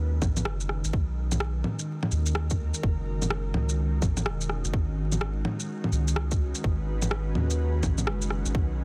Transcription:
0.00 0.20 D#2 loud
0.00 8.84 D#3 medium
0.00 0.93 G#3 loud
0.00 0.93 C#4 medium
0.00 0.92 F#4 medium
0.00 0.93 B4 medium
0.22 0.47 A#1 medium
0.22 kick loud
0.22 low bongo medium
0.22 shaker soft
0.37 low bongo soft
0.37 shaker medium
0.45 0.82 F#1 loud
0.45 cross-stick loud
0.60 shaker soft
0.69 cross-stick medium
0.84 0.92 G#1 loud
0.84 shaker medium
0.93 1.63 B1 loud
0.93 kick loud
1.32 8.84 G#3 medium
1.32 low bongo soft
1.32 shaker medium
1.40 cross-stick loud
1.59 8.84 C#4 medium
1.64 low bongo medium
1.79 8.84 F#4 medium
1.79 4.73 A#4 medium
1.79 shaker medium
2.03 low bongo medium
2.11 2.73 D#2 medium
2.11 shaker soft
2.26 shaker medium
2.35 cross-stick loud
2.50 kick loud
2.50 shaker soft
2.74 shaker medium
2.83 3.54 F#1 loud
2.83 kick loud
3.22 low bongo soft
3.22 shaker medium
3.30 cross-stick loud
3.54 4.01 C#2 loud
3.54 low bongo medium
3.69 shaker medium
4.02 4.27 G#1 medium
4.02 kick loud
4.02 low bongo medium
4.02 shaker soft
4.17 low bongo soft
4.17 shaker medium
4.25 4.63 E1 loud
4.25 cross-stick loud
4.41 shaker soft
4.49 cross-stick medium
4.64 4.73 F#1 medium
4.64 shaker medium
4.73 5.44 G#1 loud
4.73 kick loud
5.12 low bongo soft
5.12 shaker medium
5.21 cross-stick loud
5.45 low bongo medium
5.60 shaker medium
5.78 8.84 B4 medium
5.84 low bongo medium
5.92 6.53 C#2 medium
5.92 shaker soft
6.08 shaker soft
6.16 cross-stick loud
6.31 kick loud
6.31 shaker soft
6.55 shaker soft
6.64 7.34 G#1 loud
6.64 kick loud
7.02 low bongo medium
7.02 shaker medium
7.11 cross-stick loud
7.35 7.82 D#2 loud
7.35 low bongo medium
7.50 shaker medium
7.83 8.08 A#1 medium
7.83 kick medium
7.83 low bongo medium
7.83 shaker soft
7.98 low bongo soft
7.98 shaker soft
8.06 8.44 F#1 loud
8.06 cross-stick loud
8.22 shaker soft
8.30 cross-stick medium
8.45 8.54 G#1 loud
8.45 shaker soft
8.55 8.84 B1 loud
8.55 kick loud

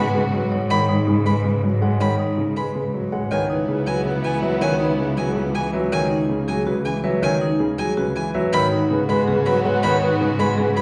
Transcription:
0.00 3.20 G#2 medium
0.00 0.20 G#3 medium
0.00 0.48 B3 medium
0.00 0.48 F#4 medium
0.00 0.20 B4 medium
0.00 0.10 B5 medium
0.15 0.39 C#3 medium
0.15 0.39 B4 medium
0.15 0.28 B4 soft
0.33 0.58 F#3 medium
0.33 0.46 B4 soft
0.52 0.76 C#5 medium
0.52 0.76 F#5 medium
0.70 0.95 D#3 medium
0.70 0.94 C#5 medium
0.70 0.84 B5 medium
0.89 1.13 D#4 medium
1.07 1.32 C#3 medium
1.07 1.32 G#4 medium
1.26 1.50 G#3 medium
1.26 1.51 B4 medium
1.26 1.40 B5 medium
1.44 1.69 C#3 medium
1.44 1.69 B4 medium
1.63 1.88 F#3 medium
1.82 2.06 G#3 medium
1.82 2.06 C#5 medium
1.82 2.06 F#5 medium
2.00 2.25 D#3 medium
2.00 2.25 C#5 medium
2.00 2.15 B5 medium
2.19 2.44 D#4 medium
2.37 2.62 C#3 medium
2.37 2.62 G#4 medium
2.57 2.81 G#3 medium
2.57 2.81 B4 medium
2.57 2.71 B5 medium
2.75 3.00 C#3 medium
2.75 3.00 B4 medium
2.94 3.18 F#3 medium
3.12 3.37 G#3 medium
3.12 3.37 C#5 medium
3.12 3.37 F#5 medium
3.31 8.42 C#2 medium
3.31 3.56 D#3 medium
3.31 5.70 B3 medium
3.31 5.70 E4 medium
3.31 3.45 B4 soft
3.31 3.56 C#5 medium
3.31 3.45 G#5 medium
3.50 3.74 D#4 medium
3.50 3.63 B4 soft
3.68 3.93 C#3 medium
3.68 3.93 G#4 medium
3.68 3.82 B4 medium
3.87 4.11 F#3 medium
3.87 4.11 G#4 medium
3.87 4.01 B4 medium
3.87 4.01 G#5 medium
4.05 4.30 C#3 medium
4.05 4.30 B4 medium
4.05 4.19 B4 medium
4.24 4.48 E3 medium
4.24 4.38 B4 medium
4.24 4.38 G#5 medium
4.42 4.67 F#3 medium
4.42 4.56 B4 medium
4.42 4.67 B4 medium
4.42 4.67 E5 medium
4.61 4.86 D#3 medium
4.61 4.75 B4 medium
4.61 4.86 C#5 medium
4.61 4.76 G#5 medium
4.80 5.05 D#4 medium
4.80 4.93 B4 medium
4.98 5.23 C#3 medium
4.98 5.23 G#4 medium
4.98 5.12 B4 medium
5.17 5.42 F#3 medium
5.17 5.42 G#4 medium
5.17 5.31 B4 medium
5.17 5.31 G#5 medium
5.36 5.60 C#3 medium
5.36 5.49 B4 soft
5.36 5.61 B4 medium
5.55 5.79 E3 medium
5.55 5.68 B4 soft
5.55 5.69 G#5 medium
5.73 5.98 F#3 medium
5.73 5.98 B4 medium
5.73 5.98 E5 medium
5.92 6.16 D#3 medium
5.92 6.16 C#5 medium
5.92 6.06 G#5 medium
6.11 6.35 D#4 medium
6.29 6.54 C#3 medium
6.29 6.54 G#4 medium
6.48 6.72 F#3 medium
6.48 6.72 G#4 medium
6.48 6.62 G#5 medium
6.66 6.91 C#3 medium
6.66 6.91 F#4 medium
6.66 6.91 B4 medium
6.85 7.10 E3 medium
6.85 6.99 G#5 medium
7.04 7.28 F#3 medium
7.04 7.28 B4 medium
7.04 7.28 E5 medium
7.22 7.47 D#3 medium
7.22 7.47 C#5 medium
7.22 7.37 G#5 medium
7.41 7.66 D#4 loud
7.60 7.84 C#3 medium
7.60 7.84 G#4 medium
7.78 8.03 F#3 medium
7.78 8.03 G#4 medium
7.78 7.93 G#5 medium
7.97 8.22 C#3 medium
7.97 8.21 F#4 medium
7.97 8.21 B4 medium
8.16 8.40 E3 medium
8.16 8.30 G#5 medium
8.34 8.59 F#3 loud
8.34 8.59 B4 medium
8.34 8.59 E5 medium
8.53 10.82 G#2 medium
8.53 8.78 D#3 medium
8.53 10.82 B3 medium
8.53 10.82 F#4 medium
8.53 8.66 B4 soft
8.53 8.78 C#5 medium
8.53 8.67 B5 loud
8.72 8.96 D#4 loud
8.72 8.85 B4 medium
8.90 9.15 C#3 medium
8.90 9.15 G#4 medium
8.90 9.04 B4 medium
9.09 9.33 G#3 medium
9.09 9.33 B4 medium
9.09 9.22 B4 medium
9.09 9.23 B5 medium
9.28 9.52 C#3 medium
9.28 9.52 G#4 medium
9.28 9.41 B4 medium
9.28 9.52 B4 medium
9.46 9.70 F#3 medium
9.46 9.60 B4 medium
9.46 9.60 B5 medium
9.65 9.89 G#3 medium
9.65 9.78 B4 medium
9.65 9.89 C#5 medium
9.65 9.89 F#5 medium
9.83 10.08 D#3 medium
9.83 9.97 B4 medium
9.83 10.08 C#5 medium
9.83 9.97 B5 medium
10.02 10.26 D#4 medium
10.02 10.15 B4 medium
10.20 10.45 C#3 medium
10.20 10.45 G#4 medium
10.20 10.34 B4 medium
10.39 10.64 G#3 medium
10.39 10.64 B4 medium
10.39 10.52 B4 medium
10.39 10.53 B5 medium
10.58 10.82 C#3 medium
10.58 10.82 G#4 medium
10.58 10.82 B4 medium
10.58 10.71 B4 medium
10.77 10.82 F#3 medium
10.77 10.82 B4 soft
10.77 10.82 B5 medium

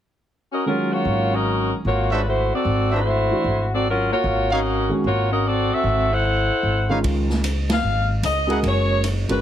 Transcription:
0.52 0.65 C#4 medium
0.52 0.65 F#4 medium
0.52 0.65 A#4 medium
0.52 0.65 D#5 medium
0.66 1.77 D#3 soft
0.66 0.91 F#3 medium
0.66 1.78 F#3 soft
0.66 1.77 G#3 soft
0.66 1.78 C#4 soft
0.66 0.91 C#4 medium
0.66 0.91 F4 medium
0.66 0.90 A#4 medium
0.92 1.32 A#3 medium
0.92 1.32 F4 medium
0.92 1.32 F#4 medium
0.92 1.32 C#5 medium
1.05 1.70 G#1 medium
1.34 1.73 C#4 medium
1.34 1.73 F#4 medium
1.34 1.73 A#4 medium
1.34 1.73 D#5 medium
1.85 2.50 G#1 medium
1.85 2.10 A#3 medium
1.85 2.10 F4 medium
1.85 2.10 F#4 medium
1.85 2.10 C#5 medium
2.12 2.26 G#3 medium
2.12 2.26 C#4 medium
2.12 2.21 D4 medium
2.12 2.26 F4 medium
2.12 2.21 F#4 medium
2.12 2.26 B4 medium
2.12 2.21 C5 medium
2.12 2.21 E5 medium
2.27 2.50 A3 medium
2.27 2.51 E4 medium
2.27 2.51 F#4 medium
2.27 2.51 C5 medium
2.54 2.93 C4 medium
2.54 2.93 F#4 medium
2.54 2.93 A4 medium
2.54 2.93 D5 medium
2.65 3.30 G#1 medium
2.91 3.69 A3 medium
2.91 3.00 D4 medium
2.91 3.69 E4 medium
2.91 3.01 F#4 medium
2.91 3.68 F#4 medium
2.91 3.01 C5 medium
2.91 3.68 C5 medium
2.91 3.00 E5 medium
3.31 3.43 E3 soft
3.31 3.44 A3 soft
3.31 3.44 D4 soft
3.31 3.44 F#4 soft
3.44 4.09 G#1 medium
3.74 3.86 C4 medium
3.74 3.86 F#4 medium
3.74 3.86 A4 medium
3.74 3.86 D5 medium
3.89 4.11 F#3 medium
3.89 4.11 C#4 medium
3.89 4.11 F4 medium
3.89 4.11 A#4 medium
4.12 4.48 A#3 medium
4.12 4.49 F4 medium
4.12 4.49 F#4 medium
4.12 4.49 C#5 medium
4.24 4.89 G#1 medium
4.51 4.92 C#4 medium
4.51 4.60 D#4 medium
4.51 4.60 F#4 medium
4.51 4.92 F#4 medium
4.51 4.92 A#4 medium
4.51 4.60 C#5 medium
4.51 4.92 D#5 medium
4.51 4.60 F5 medium
4.89 5.02 D#3 soft
4.89 5.03 G#3 soft
4.89 5.03 C#4 soft
4.89 5.03 F#4 medium
5.04 5.69 G#1 medium
5.04 5.29 A#3 medium
5.04 5.29 F4 medium
5.04 5.29 F#4 medium
5.04 5.30 C#5 medium
5.31 5.44 C#4 medium
5.31 5.44 F#4 medium
5.31 5.44 A#4 medium
5.31 5.44 D#5 medium
5.47 5.72 C4 medium
5.47 5.72 F#4 medium
5.47 5.72 A4 medium
5.47 5.72 D5 medium
5.73 6.11 C4 medium
5.73 6.12 F#4 medium
5.73 6.11 A4 medium
5.73 6.11 E5 medium
5.84 6.48 G#1 medium
6.12 6.91 E4 medium
6.12 6.91 A4 medium
6.12 6.91 C5 medium
6.12 6.91 F#5 medium
6.63 7.00 G#1 medium
6.89 7.41 D#3 soft
6.89 7.41 G#3 soft
6.89 7.41 C#4 soft
6.89 7.00 D#4 medium
6.89 7.42 F4 soft
6.89 6.99 B4 medium
6.89 7.00 C#5 medium
6.89 6.99 F5 medium
7.04 7.79 C#2 medium
7.04 kick soft
7.04 ride medium
7.30 snare soft
7.44 hi-hat pedal medium
7.44 ride medium
7.69 8.08 F5 medium
7.69 snare medium
7.69 ride medium
7.83 8.20 G#1 medium
8.23 8.60 C#2 medium
8.23 8.62 D#5 medium
8.23 hi-hat pedal medium
8.23 ride medium
8.47 8.99 G#3 medium
8.47 8.99 C#4 soft
8.47 8.59 E4 medium
8.47 9.00 F#4 soft
8.47 8.59 G#4 medium
8.47 9.00 A#4 medium
8.47 8.59 A#4 medium
8.47 8.59 F#5 medium
8.47 ride soft
8.63 9.25 F#1 medium
8.63 kick soft
8.63 ride medium
8.67 9.05 C#5 medium
9.04 hi-hat pedal medium
9.04 ride medium
9.29 9.41 G1 medium
9.29 9.41 G#3 medium
9.29 9.41 C#4 soft
9.29 9.41 F#4 soft
9.29 9.41 A#4 medium
9.29 9.41 B4 medium
9.29 ride soft

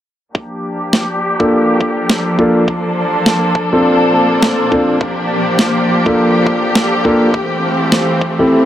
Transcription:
0.35 4.97 F3 medium
0.35 7.30 A#3 medium
0.35 7.30 D4 medium
0.35 3.63 G4 medium
0.35 2.66 G4 medium
0.35 kick loud
0.44 8.29 C5 medium
0.53 7.34 F5 medium
0.91 8.29 A5 medium
0.91 snare loud
1.40 2.36 A#3 medium
1.40 2.36 D4 medium
1.40 2.36 F4 medium
1.40 2.36 A4 medium
1.40 kick loud
1.81 kick loud
2.10 snare loud
2.38 2.62 A#3 medium
2.38 2.62 D4 medium
2.38 2.62 F4 medium
2.38 2.62 A4 medium
2.38 kick medium
2.68 5.96 A#3 medium
2.68 4.99 A4 medium
2.68 kick loud
3.26 snare loud
3.55 kick loud
3.73 4.69 C4 medium
3.73 4.69 D4 medium
3.73 4.69 F4 medium
3.73 4.69 A4 medium
4.43 snare loud
4.72 4.95 C4 medium
4.72 4.95 D4 medium
4.72 4.95 F4 medium
4.72 4.95 A4 medium
4.72 kick loud
5.01 7.32 F3 medium
5.01 8.29 G4 medium
5.01 8.65 G4 medium
5.01 kick loud
5.59 snare loud
6.06 7.02 A#3 medium
6.06 7.02 D4 medium
6.06 7.02 F4 medium
6.06 7.02 A4 medium
6.06 kick loud
6.47 kick loud
6.75 snare loud
7.05 7.28 A#3 medium
7.05 7.28 D4 medium
7.05 7.28 F4 medium
7.05 7.28 A4 loud
7.05 kick medium
7.34 8.65 E3 medium
7.34 8.65 A3 medium
7.34 8.65 C4 medium
7.34 8.65 A4 medium
7.34 kick loud
7.58 8.65 G5 medium
7.79 8.65 D5 medium
7.92 snare loud
8.21 kick loud
8.39 8.65 C4 medium
8.39 8.65 E4 medium
8.39 8.65 G4 medium
8.39 8.65 A4 medium

